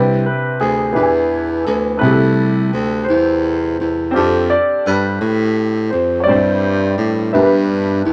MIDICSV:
0, 0, Header, 1, 4, 480
1, 0, Start_track
1, 0, Key_signature, 0, "major"
1, 0, Tempo, 710059
1, 1363, Time_signature, 6, 3, 24, 8
1, 5495, End_track
2, 0, Start_track
2, 0, Title_t, "Grand piano"
2, 0, Program_c, 0, 0
2, 177, Note_on_c, 0, 71, 82
2, 409, Note_on_c, 0, 68, 79
2, 417, Note_off_c, 0, 71, 0
2, 859, Note_off_c, 0, 68, 0
2, 1114, Note_on_c, 0, 69, 65
2, 1169, Note_off_c, 0, 69, 0
2, 1344, Note_on_c, 0, 71, 85
2, 2055, Note_on_c, 0, 72, 77
2, 2096, Note_off_c, 0, 71, 0
2, 2582, Note_off_c, 0, 72, 0
2, 3042, Note_on_c, 0, 74, 84
2, 3290, Note_off_c, 0, 74, 0
2, 3291, Note_on_c, 0, 71, 79
2, 3740, Note_off_c, 0, 71, 0
2, 3987, Note_on_c, 0, 72, 68
2, 4193, Note_on_c, 0, 73, 55
2, 4194, Note_off_c, 0, 72, 0
2, 4215, Note_on_c, 0, 74, 83
2, 4241, Note_off_c, 0, 73, 0
2, 4953, Note_on_c, 0, 76, 71
2, 4970, Note_off_c, 0, 74, 0
2, 5470, Note_off_c, 0, 76, 0
2, 5495, End_track
3, 0, Start_track
3, 0, Title_t, "Upright piano"
3, 0, Program_c, 1, 0
3, 0, Note_on_c, 1, 48, 58
3, 0, Note_on_c, 1, 60, 60
3, 0, Note_on_c, 1, 62, 54
3, 0, Note_on_c, 1, 64, 56
3, 0, Note_on_c, 1, 71, 68
3, 0, Note_on_c, 1, 79, 60
3, 63, Control_c, 1, 64, 127
3, 620, Note_off_c, 1, 48, 0
3, 626, Note_off_c, 1, 62, 0
3, 627, Note_on_c, 1, 59, 54
3, 630, Note_off_c, 1, 64, 0
3, 636, Note_on_c, 1, 62, 50
3, 641, Note_off_c, 1, 71, 0
3, 641, Note_on_c, 1, 64, 48
3, 642, Note_off_c, 1, 60, 0
3, 643, Note_on_c, 1, 52, 56
3, 645, Note_on_c, 1, 67, 41
3, 649, Note_off_c, 1, 79, 0
3, 651, Note_on_c, 1, 71, 62
3, 652, Control_c, 1, 64, 0
3, 688, Note_off_c, 1, 67, 0
3, 693, Note_on_c, 1, 80, 53
3, 761, Control_c, 1, 64, 127
3, 1335, Note_on_c, 1, 57, 54
3, 1337, Note_off_c, 1, 52, 0
3, 1349, Note_off_c, 1, 64, 0
3, 1349, Note_on_c, 1, 60, 50
3, 1356, Note_off_c, 1, 59, 0
3, 1358, Note_on_c, 1, 48, 53
3, 1360, Note_off_c, 1, 62, 0
3, 1360, Note_on_c, 1, 64, 47
3, 1368, Note_off_c, 1, 71, 0
3, 1372, Control_c, 1, 64, 0
3, 1374, Note_on_c, 1, 67, 49
3, 1384, Note_on_c, 1, 68, 45
3, 1389, Note_off_c, 1, 80, 0
3, 1417, Note_off_c, 1, 68, 0
3, 1428, Note_on_c, 1, 69, 57
3, 1483, Control_c, 1, 64, 127
3, 2054, Note_off_c, 1, 48, 0
3, 2763, Note_off_c, 1, 57, 0
3, 2768, Note_off_c, 1, 60, 0
3, 2775, Note_off_c, 1, 64, 0
3, 2779, Note_on_c, 1, 60, 67
3, 2782, Note_off_c, 1, 67, 0
3, 2789, Note_on_c, 1, 62, 56
3, 2798, Note_on_c, 1, 65, 60
3, 2809, Note_off_c, 1, 69, 0
3, 2809, Note_on_c, 1, 67, 62
3, 2813, Control_c, 1, 64, 0
3, 2823, Note_on_c, 1, 69, 70
3, 2917, Control_c, 1, 64, 127
3, 4203, Note_off_c, 1, 60, 0
3, 4209, Note_off_c, 1, 62, 0
3, 4213, Note_off_c, 1, 65, 0
3, 4218, Note_off_c, 1, 67, 0
3, 4226, Note_off_c, 1, 69, 0
3, 4235, Note_on_c, 1, 55, 57
3, 4241, Note_on_c, 1, 60, 54
3, 4244, Note_on_c, 1, 62, 40
3, 4248, Note_on_c, 1, 43, 55
3, 4252, Control_c, 1, 64, 0
3, 4255, Note_on_c, 1, 67, 52
3, 4258, Note_on_c, 1, 72, 62
3, 4287, Note_off_c, 1, 62, 0
3, 4289, Note_on_c, 1, 64, 52
3, 4388, Control_c, 1, 64, 127
3, 4937, Note_off_c, 1, 43, 0
3, 4957, Note_on_c, 1, 59, 59
3, 4958, Note_off_c, 1, 55, 0
3, 4961, Note_off_c, 1, 60, 0
3, 4962, Note_off_c, 1, 67, 0
3, 4964, Note_on_c, 1, 62, 53
3, 4966, Note_on_c, 1, 43, 55
3, 4969, Note_off_c, 1, 72, 0
3, 4970, Note_on_c, 1, 65, 52
3, 4971, Control_c, 1, 64, 0
3, 4972, Note_on_c, 1, 67, 51
3, 4979, Note_on_c, 1, 70, 48
3, 4985, Note_off_c, 1, 64, 0
3, 5014, Note_off_c, 1, 70, 0
3, 5023, Note_on_c, 1, 71, 61
3, 5081, Control_c, 1, 64, 127
3, 5495, Note_off_c, 1, 43, 0
3, 5495, Note_off_c, 1, 59, 0
3, 5495, Note_off_c, 1, 62, 0
3, 5495, Note_off_c, 1, 65, 0
3, 5495, Note_off_c, 1, 67, 0
3, 5495, Note_off_c, 1, 71, 0
3, 5495, End_track
4, 0, Start_track
4, 0, Title_t, "Baritone saxophone"
4, 0, Program_c, 2, 67
4, 0, Note_on_c, 2, 36, 85
4, 199, Note_off_c, 2, 36, 0
4, 409, Note_on_c, 2, 38, 76
4, 627, Note_off_c, 2, 38, 0
4, 645, Note_on_c, 2, 40, 82
4, 1097, Note_off_c, 2, 40, 0
4, 1125, Note_on_c, 2, 38, 72
4, 1345, Note_off_c, 2, 38, 0
4, 1364, Note_on_c, 2, 36, 84
4, 1817, Note_off_c, 2, 36, 0
4, 1845, Note_on_c, 2, 38, 76
4, 2065, Note_off_c, 2, 38, 0
4, 2088, Note_on_c, 2, 40, 79
4, 2539, Note_off_c, 2, 40, 0
4, 2569, Note_on_c, 2, 40, 72
4, 2787, Note_off_c, 2, 40, 0
4, 2810, Note_on_c, 2, 41, 95
4, 3082, Note_off_c, 2, 41, 0
4, 3287, Note_on_c, 2, 43, 73
4, 3506, Note_off_c, 2, 43, 0
4, 3520, Note_on_c, 2, 45, 86
4, 3974, Note_off_c, 2, 45, 0
4, 4005, Note_on_c, 2, 41, 72
4, 4247, Note_on_c, 2, 43, 83
4, 4257, Note_off_c, 2, 41, 0
4, 4697, Note_off_c, 2, 43, 0
4, 4717, Note_on_c, 2, 45, 72
4, 4940, Note_off_c, 2, 45, 0
4, 4960, Note_on_c, 2, 43, 87
4, 5413, Note_off_c, 2, 43, 0
4, 5440, Note_on_c, 2, 40, 73
4, 5495, Note_off_c, 2, 40, 0
4, 5495, End_track
0, 0, End_of_file